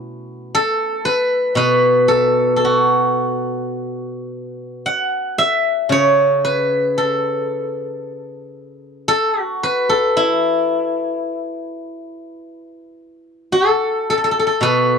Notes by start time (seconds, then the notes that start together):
Already playing: B2 A3 B3 C#4 E4 A4
0.55 A4
1.05 B4
1.55 B2 B4
2.08 A4
2.56 A4
2.65 F#4
4.86 F#5
5.38 E5
5.89 C#3 C#5
6.45 B4
6.98 A4
9.08 A4
9.41 F#4
9.63 B4
9.89 A4
10.17 E4
13.52 A4
14.10 A4
14.18 A4
14.24 A4
14.31 A4
14.39 A4
14.47 A4
14.61 B2 B4